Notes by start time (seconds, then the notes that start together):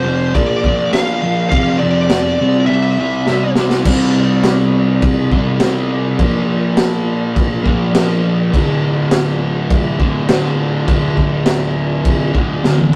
Already playing: C5
0.04 F2 C3 F3
0.34 A#2 F3 A#3 D5, kick, crash
0.63 A#2 F3 A#3, kick
0.93 A#2 F3 A#3 F5, snare, crash
1.22 A#2 F3 A#3
1.49 F2 C3 F3 F5, kick, crash
1.79 F2 C3 D5
1.83 F3
2.10 F2 C3 F3, snare, crash
2.40 C3 G3 C4
2.66 C3 G3 E5
2.70 C4
2.98 C3 G3 C4
3.27 C3 G3 C4, snare
3.56 C3 G3 C4, snare
3.70 snare
3.85 C3 G3, kick, crash
3.89 C4
4.44 snare, crash
5.02 kick, crash
5.32 G3 C4, kick
5.36 C3
5.60 C3 G3, snare, crash
5.65 C4
6.19 A#2 F3, kick, crash
6.23 A#3
6.77 snare, crash
7.36 kick, crash
7.64 F3 A#3, kick
7.68 A#2
7.93 A#2 F3, snare, crash
7.97 A#3
8.52 D2 A2, kick, crash
8.56 D3
9.11 snare, crash
9.70 kick, crash
9.98 A2 D3, kick
10.02 D2
10.28 D2 A2 D3, snare, crash
10.87 D2 A2, kick, crash
10.91 D3
11.17 kick
11.46 snare, crash
12.05 kick, crash
12.33 A2 D3, kick
12.38 D2
12.63 D2 A2, snare
12.67 D3
12.78 high tom